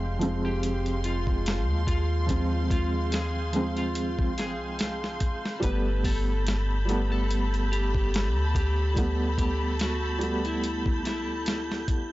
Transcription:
Already playing: upright bass F1, felt piano F3 G#3 C4, string section G#3 F5 C6, synth texture G6
0.19 felt piano F3 G#3 C4, closed hi-hat
0.45 electric slide guitar G4
0.63 closed hi-hat
0.86 closed hi-hat
1.04 electric slide guitar F4, closed hi-hat
1.27 kick
1.46 snare, closed hi-hat
1.69 upright bass D#2
1.87 electric slide guitar F4, kick, closed hi-hat
2.26 felt piano F3 G#3, kick, closed hi-hat
2.31 felt piano C4
2.71 electric slide guitar F4, kick, closed hi-hat
3.12 electric slide guitar G#4, snare, closed hi-hat
3.52 felt piano F3 G#3 C4, closed hi-hat
3.77 electric slide guitar F4, closed hi-hat
3.95 closed hi-hat
4.19 kick
4.38 upright bass G#1, electric slide guitar G#4, snare, closed hi-hat
4.61 upright bass C2
4.79 snare, closed hi-hat
5.04 snare
5.20 kick, closed hi-hat
5.45 snare
5.60 upright bass G1, felt piano G3 A3, string section A4 A5 B5, electric slide guitar B4, kick, closed hi-hat
5.64 felt piano B3
6.04 electric slide guitar A4, kick, open hi-hat
6.47 snare, closed hi-hat
6.85 felt piano G3 A3, closed hi-hat
6.90 felt piano B3
7.12 electric slide guitar A4
7.31 closed hi-hat
7.54 closed hi-hat
7.72 electric slide guitar G4, closed hi-hat
7.95 kick
8.14 snare, closed hi-hat
8.36 upright bass D2
8.55 electric slide guitar G4, kick, closed hi-hat
8.94 felt piano G3 A3, kick, closed hi-hat
8.98 felt piano B3
9.38 electric slide guitar G4, kick, closed hi-hat
9.79 electric slide guitar F#4, snare, closed hi-hat
10.19 felt piano G3 A3, closed hi-hat
10.23 felt piano B3
10.45 electric slide guitar E4, closed hi-hat
10.64 closed hi-hat
10.86 kick
11.05 upright bass B1, electric slide guitar E4, snare, closed hi-hat
11.28 upright bass D2
11.46 snare, closed hi-hat
11.72 snare
11.88 kick, closed hi-hat

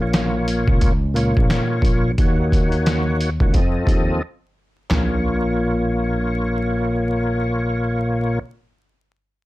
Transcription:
Already playing: fretless electric bass A#1
0.00 tonewheel organ A#2 A#3 F4 C#5
0.13 snare, closed hi-hat
0.48 closed hi-hat
0.68 fretless electric bass C#2, kick
0.81 kick, closed hi-hat
1.14 tonewheel organ A#2 A#3 F4 C#5, closed hi-hat
1.37 fretless electric bass A#1, kick
1.50 snare, closed hi-hat
1.82 fretless electric bass A#1, kick, closed hi-hat
2.18 fretless electric bass D#2, tonewheel organ D#3 A#3 F#4 C#5, kick, closed hi-hat
2.52 kick, closed hi-hat
2.72 closed hi-hat
2.86 snare, closed hi-hat
3.21 closed hi-hat
3.40 fretless electric bass C#2, tonewheel organ D#3 A#3 F#4 C#5, kick
3.52 fretless electric bass F2, tonewheel organ F3 C4 A4 D#5, kick, closed hi-hat
3.87 fretless electric bass D#2, kick, closed hi-hat
4.90 fretless electric bass A#1, tonewheel organ A#2 A#3 F4 C#5, snare, clap, floor tom

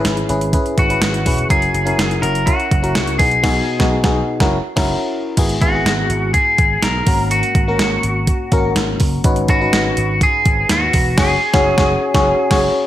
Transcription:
Already playing: fm electric piano G#2 C#4 E4 G#4 B4
0.05 slap bass G#1, snare, closed hi-hat
0.17 closed hi-hat
0.29 slap bass G#1, fm electric piano C#4 E4 G#4 B4, closed hi-hat
0.41 closed hi-hat
0.53 fm electric piano C#4 E4 G#4 B4, kick, closed hi-hat
0.66 closed hi-hat
0.78 slap bass G#1, lead electric guitar F#4, kick, closed hi-hat
0.89 fm electric piano C#4 E4 G#4 B4, closed hi-hat
1.01 slap bass G#1, snare, closed hi-hat
1.14 closed hi-hat
1.26 slap bass E1, fm electric piano C#4 E4 G#4 B4, kick, open hi-hat
1.39 closed hi-hat
1.49 slap bass F#1, fm electric piano C#4 E4 F#4 A#4, lead electric guitar G#4, kick, closed hi-hat
1.62 closed hi-hat
1.74 slap bass F#1, closed hi-hat
1.85 fm electric piano C#4 E4 F#4 A#4, closed hi-hat
1.98 slap bass F#1, snare, closed hi-hat
2.11 closed hi-hat
2.22 slap bass F#1, fm electric piano C#4 E4 F#4 A#4, lead electric guitar A#4, closed hi-hat
2.35 closed hi-hat
2.46 fm electric piano C#4 E4 F#4 A#4, lead electric guitar F#4, kick, closed hi-hat
2.60 closed hi-hat
2.71 slap bass F#1, kick, closed hi-hat
2.83 fm electric piano C#4 E4 F#4 A#4, closed hi-hat
2.95 slap bass C#2, snare, closed hi-hat
3.07 closed hi-hat
3.19 slap bass B1, fm electric piano B2 B3 D#4 F#4 G#4, lead electric guitar G#4, kick, open hi-hat
3.31 closed hi-hat
3.43 slap bass B1, fm electric piano B2 B3 D#4 F#4 G#4, kick, snare, crash
3.79 slap bass B1, fm electric piano B3 D#4 F#4 G#4, kick, snare
4.04 slap bass B1, fm electric piano B3 D#4 F#4 G#4, kick, snare
4.40 slap bass F#1, fm electric piano C#4 E4 F#4 A#4, kick, snare
4.76 slap bass F#1, fm electric piano C#4 E4 F#4 A#4, kick, snare, crash
5.37 slap bass G#1, fm electric piano G#2 B3 E4 F#4 G#4, kick, closed hi-hat, crash
5.49 closed hi-hat
5.61 slap bass G#1, fm electric piano B3 E4 F#4 G#4, lead electric guitar F#4, kick, closed hi-hat
5.74 fm electric piano B3 E4 F#4 G#4
5.85 slap bass G#1, snare, closed hi-hat
6.09 slap bass G#1, closed hi-hat
6.34 lead electric guitar G#4, kick, closed hi-hat
6.58 slap bass G#1, kick, closed hi-hat
6.82 slap bass B1, lead electric guitar A#4, snare, closed hi-hat
7.06 slap bass G#1, fm electric piano G#2 A#3 C#4 F#4 A#4, kick, open hi-hat
7.31 lead electric guitar F#4, closed hi-hat
7.43 closed hi-hat
7.55 slap bass G#1, kick, closed hi-hat
7.68 fm electric piano A#3 C#4 F#4 A#4
7.79 slap bass G#1, snare, closed hi-hat
8.03 slap bass G#1, closed hi-hat
8.27 kick, closed hi-hat
8.52 slap bass G#1, fm electric piano A#3 C#4 F#4 A#4, kick, closed hi-hat
8.76 slap bass G#1, snare, closed hi-hat
9.00 slap bass F#1, kick, open hi-hat
9.24 slap bass G#1, fm electric piano G#2 C#4 D#4 F#4 B4, kick, closed hi-hat
9.36 closed hi-hat
9.48 slap bass G#1, fm electric piano C#4 D#4 F#4 B4, lead electric guitar F#4, kick, closed hi-hat
9.60 fm electric piano C#4 D#4 F#4 B4
9.73 slap bass G#1, snare, closed hi-hat
9.97 slap bass G#1, closed hi-hat
10.21 lead electric guitar G#4, kick, closed hi-hat
10.45 slap bass G#1, kick, closed hi-hat
10.69 slap bass D#2, lead electric guitar F#4, snare, closed hi-hat
10.93 slap bass E1, kick, open hi-hat
11.18 slap bass F#1, fm electric piano C#4 F#4 G#4 C#5, lead electric guitar G#4, kick, snare, crash
11.54 slap bass F#1, fm electric piano C#4 F#4 G#4 C#5, kick, snare
11.78 slap bass F#1, fm electric piano C#4 F#4 G#4 C#5, kick, snare
12.14 slap bass F#1, fm electric piano C#4 F#4 G#4 C#5, kick, snare
12.51 slap bass F#1, fm electric piano C#4 F#4 G#4 C#5, kick, snare, crash

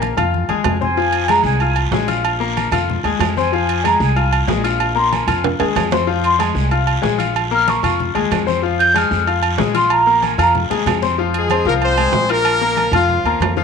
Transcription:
Already playing: upright bass A#1, grand piano A#3 A#4 A#5
0.02 high conga, low timbale, low agogo
0.17 upright bass F2, grand piano F4 F5 F6, low conga, low agogo
0.34 high conga
0.49 upright bass D#2, grand piano G#3 G#4 G#5, high conga, low agogo
0.64 upright bass F2, low conga, low timbale, low agogo
0.81 grand piano C4 C5 C6, flute G#5, low conga
0.97 grand piano F3 F4 F5, high conga, long guiro
1.12 high conga, low agogo
1.28 grand piano G#3 G#4 G#5, flute A#5, high conga, low timbale, low agogo, short guiro
1.43 upright bass C2, flute G#5, short guiro
1.60 grand piano F4 F5 F6, high conga, low agogo, long guiro
1.76 high conga, low agogo
1.91 upright bass A#1, grand piano G#3 G#4 G#5, high conga, low timbale, short guiro
2.08 grand piano F4 F5 F6, high conga, low agogo, short guiro
2.25 low agogo, long guiro
2.40 grand piano A#3 A#4 A#5, high conga
2.57 high conga, low timbale, low agogo, short guiro
2.71 upright bass F2, grand piano F4 F5 F6, low conga, low agogo, short guiro
2.89 high conga, low conga, long guiro
3.04 upright bass D#2, grand piano G#3 G#4 G#5, high conga, low agogo
3.19 upright bass F2, high conga, low timbale, low agogo, short guiro
3.37 grand piano C4 C5 C6, flute G#5, high conga, short guiro
3.52 grand piano F3 F4 F5, high conga, long guiro
3.69 high conga, low agogo
3.84 grand piano G#3 G#4 G#5, flute A#5, high conga, low timbale, low agogo, short guiro
4.00 upright bass C2, flute G#5, short guiro
4.16 grand piano F4 F5 F6, high conga, low agogo, long guiro
4.33 high conga, low agogo
4.47 upright bass A#1, grand piano G#3 G#4 G#5, high conga, low timbale, short guiro
4.64 grand piano F4 F5 F6, low agogo, short guiro
4.80 high conga, low agogo, long guiro
4.95 grand piano A#3 A#4 A#5, flute C6, high conga
5.12 flute G#5, high conga, low timbale, low agogo, short guiro
5.27 upright bass F2, grand piano F4 F5 F6, low conga, low agogo, short guiro
5.44 high conga, low conga, high timbale, long guiro
5.60 upright bass D#2, grand piano G#3 G#4 G#5, high timbale, low agogo
5.76 upright bass F2, high conga, low timbale, low agogo, short guiro
5.91 grand piano C4 C5 C6, high conga, low timbale, short guiro
6.07 grand piano F3 F4 F5, high conga, long guiro
6.24 flute C6, high conga, low agogo
6.39 grand piano G#3 G#4 G#5, flute G#5, high conga, low timbale, low agogo, short guiro
6.55 upright bass C2, short guiro
6.71 grand piano F4 F5 F6, high conga, low agogo, long guiro
6.87 high conga, low agogo
7.02 upright bass A#1, grand piano G#3 G#4 G#5, high conga, low timbale, short guiro
7.18 grand piano F4 F5 F6, high conga, low agogo, short guiro
7.35 low agogo, long guiro
7.51 grand piano A#3 A#4 A#5, flute F6, high conga
7.68 flute C#6, high conga, low timbale, low agogo, short guiro
7.83 upright bass F2, grand piano F4 F5 F6, low conga, low agogo, short guiro
8.00 high conga, low conga, long guiro
8.15 upright bass D#2, grand piano G#3 G#4 G#5, high conga, low agogo
8.31 upright bass F2, high conga, low timbale, low agogo, short guiro
8.47 grand piano C4 C5 C6, high conga, short guiro
8.62 grand piano F3 F4 F5, high conga, long guiro
8.79 flute G6, high conga, low agogo
8.94 grand piano G#3 G#4 G#5, flute F6, high conga, low timbale, low agogo, short guiro
9.11 upright bass F2, short guiro
9.27 grand piano F4 F5 F6, high conga, low agogo, long guiro
9.43 high conga, low agogo
9.58 upright bass A#1, grand piano G#3 G#4 G#5, high conga, low timbale, short guiro
9.74 grand piano F4 F5 F6, flute C6, high conga, low agogo, short guiro
9.90 flute A#5, high conga, low agogo, long guiro
10.07 grand piano A#3 A#4 A#5, high conga
10.23 flute G#5, high conga, low timbale, low agogo, short guiro
10.38 upright bass F2, grand piano F4 F5 F6, flute A#5, high conga, low agogo, short guiro
10.55 low conga, long guiro
10.70 upright bass D#2, grand piano G#3 G#4 G#5, low conga, low agogo
10.86 upright bass F2, low conga, low timbale, low agogo, short guiro
11.02 grand piano C4 C5 C6, low conga, short guiro
11.18 grand piano F3 F4 F5, high conga
11.34 horn section G#3 G#4, high conga, low agogo
11.50 grand piano C4 C5 C6, high conga, low timbale, low agogo
11.65 upright bass C2, grand piano F3 F4 F5, horn section A#3 A#4
11.82 horn section C4 C5, high conga, low agogo
11.98 grand piano G#3 G#4 G#5, high conga, low agogo
12.12 upright bass A#1, high conga, low timbale
12.29 horn section A#3 A#4, grand piano F4 F5 F6, low agogo
12.45 high conga, low agogo
12.61 grand piano A#3 A#4 A#5, high conga
12.77 high conga, low timbale, low agogo
12.92 upright bass F2, horn section F3 F4, grand piano F4 F5 F6, low conga, low agogo
13.09 high conga, low conga
13.24 upright bass D#2, grand piano A#3 A#4 A#5, high conga, low agogo
13.40 upright bass F2, high conga, low timbale, low agogo
13.57 grand piano F3 F4 F5, high conga

